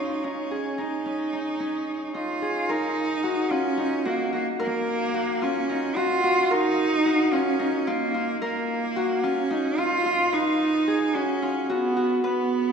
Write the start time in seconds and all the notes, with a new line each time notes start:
Already playing: C#4 D#4 F#4
0.24 C#4 D#4
0.51 G#4
0.78 D#4
1.06 C#4
1.33 D#4
1.60 C#4
2.14 D#4 F4
2.42 G#4
2.69 D#4 A#4
3.24 F#4
3.50 C#4 F4
3.77 D#4
4.05 A#3 F#4
4.33 A#3 F#4
4.60 A#3 A#4
5.14 F#4
5.42 C#4 F4
5.69 D#4
5.96 F4 F#4
6.24 F#4
6.51 D#4 A#4
7.05 F#4
7.32 C#4 F4
7.59 D#4
7.87 A#3 F4
8.14 F4
8.42 A#3 A#4
8.96 F#4
9.24 C#4 F4
9.51 D#4
9.78 F4
10.06 F4
10.32 D#4 B4
10.87 G#4
11.15 C#4 F#4
11.42 F4
11.70 B3 F#4
11.97 F#4
12.24 B3 B4